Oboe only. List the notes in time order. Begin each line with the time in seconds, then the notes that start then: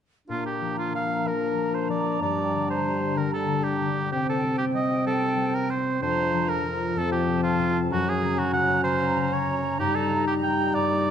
0.30 F4
0.46 G4
0.78 F4
0.95 F5
1.27 A#4
1.74 C5
1.90 D5
2.22 D5
2.70 C5
3.17 A#4
3.33 A4
3.64 G4
4.12 G4
4.29 A4
4.58 G4
4.75 D#5
5.07 A4
5.55 A#4
5.70 C5
6.02 C5
6.49 A#4
6.98 A4
7.12 G4
7.43 F4
7.92 F#4
8.09 G#4
8.38 F#4
8.53 F#5
8.84 C5
9.33 C#5
9.80 G4
9.95 A4
10.27 G4
10.43 G5
10.75 D5